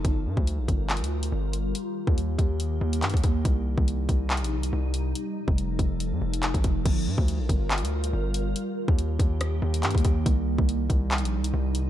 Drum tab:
CC |------------------------------------------------|------------------------------------------------|------------------------------------------------|------------------------------------------------|
HH |x-----------x-----x-----x-x-x----x--------x-----|x-----------x-----x-----x--------x--x-x-x-x-----|x-----------x-----x-----x-x-x----x--------x-----|x-----------x-----x-----x--------x--x--x--x-----|
CP |------------------------x-----------------------|------------------------------------x-----------|------------------------x-----------------------|------------------------------------x-----------|
SD |------------------------------------------------|------------------------------------------------|------------------------------------------------|------------------------------------------------|
BD |o--------o--------o-----------------------------|---------o--------o--------------------o--o-----|o--------o--------o-----------------------------|---------o--------o--------------------o--o-----|

CC |x-----------------------------------------------|------------------------------------------------|------------------------------------------------|
HH |x-----------x-----x-----x-x-x----x--------x-----|x-----------x-----x-----x--------x--x-x-x-x-----|x-----------x-----x-----x-x-x----x--------x-----|
CP |------------------------x-----------------------|------------------------------------x-----------|------------------------x-----------------------|
SD |------------------------------------------------|------------------------r-----------------------|------------------------------------------------|
BD |o--------o--------o-----------------------------|---------o--------o--------------------o--o-----|o--------o--------o-----------------------------|